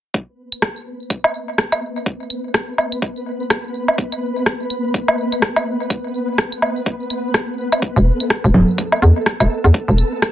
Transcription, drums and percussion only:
0.14 kick loud
0.52 claves medium
0.62 kick loud
0.62 cross-stick medium
1.10 kick loud
1.10 claves medium
1.24 low woodblock medium
1.58 kick loud
1.58 cross-stick medium
1.72 claves medium
1.72 low woodblock medium
2.06 kick loud
2.30 claves medium
2.54 kick loud
2.54 cross-stick medium
2.78 low woodblock medium
2.92 claves medium
3.02 kick loud
3.50 kick loud
3.50 cross-stick medium
3.50 claves medium
3.88 low woodblock soft
3.98 kick loud
4.12 claves medium
4.46 kick loud
4.46 cross-stick medium
4.70 claves medium
4.94 kick loud
5.08 low woodblock medium
5.32 claves medium
5.42 kick loud
5.42 cross-stick medium
5.56 low woodblock medium
5.90 kick loud
5.90 claves medium
6.38 kick loud
6.38 cross-stick medium
6.52 claves medium
6.62 low woodblock medium
6.86 kick loud
7.10 claves medium
7.34 kick loud
7.34 cross-stick medium
7.72 claves medium
7.72 low woodblock soft
7.82 kick loud
8.20 claves medium
8.30 kick loud
8.30 cross-stick medium
8.54 low conga medium
8.78 kick loud
8.78 claves medium
8.92 low woodblock medium
9.26 kick loud
9.26 cross-stick medium
9.40 claves medium
9.40 low woodblock medium
9.74 kick loud
9.98 claves medium
10.22 kick loud
10.22 cross-stick medium

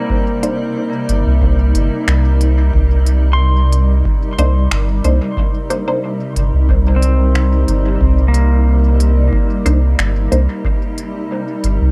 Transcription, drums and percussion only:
0.10 kick medium
0.43 closed hi-hat soft
1.09 closed hi-hat soft
1.42 kick medium
1.75 closed hi-hat soft
2.08 finger snap medium
2.41 closed hi-hat soft
2.74 kick loud
3.06 closed hi-hat medium
3.73 closed hi-hat medium
4.05 kick loud
4.39 closed hi-hat medium
4.71 finger snap medium
5.04 closed hi-hat medium
5.37 kick loud
5.70 closed hi-hat medium
6.36 closed hi-hat medium
6.69 kick loud
7.02 closed hi-hat medium
7.35 finger snap medium
7.68 closed hi-hat medium
8.01 kick loud
8.34 closed hi-hat soft
9.00 closed hi-hat soft
9.33 kick loud
9.66 closed hi-hat soft
9.99 finger snap medium
10.32 closed hi-hat medium
10.65 kick loud
10.98 closed hi-hat soft
11.64 closed hi-hat soft

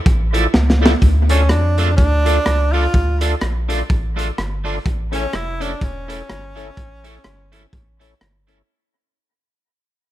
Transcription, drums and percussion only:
0.06 kick loud
0.06 closed hi-hat medium
0.34 closed hi-hat loud
0.54 snare medium
0.70 snare medium
0.86 snare loud
1.02 kick loud
1.02 closed hi-hat medium
1.29 closed hi-hat loud
1.49 cross-stick loud
1.49 closed hi-hat medium
1.78 closed hi-hat medium
1.98 kick loud
1.98 closed hi-hat medium
2.26 closed hi-hat loud
2.46 cross-stick loud
2.46 closed hi-hat medium
2.73 open hi-hat soft
2.94 kick loud
2.94 closed hi-hat medium
3.21 closed hi-hat loud
3.41 cross-stick loud
3.41 closed hi-hat medium
3.70 closed hi-hat loud
3.90 kick loud
3.90 closed hi-hat medium
4.19 closed hi-hat loud
4.38 cross-stick loud
4.38 closed hi-hat medium
4.66 open hi-hat soft
4.86 kick loud
4.86 closed hi-hat medium
5.13 closed hi-hat loud
5.33 cross-stick loud
5.33 closed hi-hat medium
5.61 closed hi-hat medium
5.81 kick loud
5.81 closed hi-hat medium
6.10 closed hi-hat loud
6.29 cross-stick loud
6.29 closed hi-hat medium
6.57 closed hi-hat medium
6.77 kick medium
6.77 closed hi-hat medium
7.04 closed hi-hat loud
7.24 cross-stick loud
7.24 closed hi-hat medium
7.53 closed hi-hat medium
7.73 kick loud
7.73 closed hi-hat medium
8.01 closed hi-hat loud
8.21 cross-stick loud
8.21 closed hi-hat medium
8.48 closed hi-hat medium

